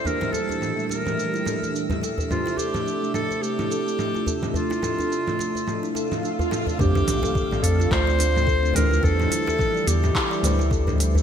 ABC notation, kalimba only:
X:1
M:4/4
L:1/16
Q:"Swing 16ths" 1/4=107
K:Dm
V:1 name="Kalimba"
D E A D D A, D c A, E A A, D E A c | D E A D D A, D c A, E A A, D F A c | D E A D D A, D c A, E A A, D F A c | D D D A A d G F F d D A, A D G F |
D D D A A d G E E d D A, A D G E |]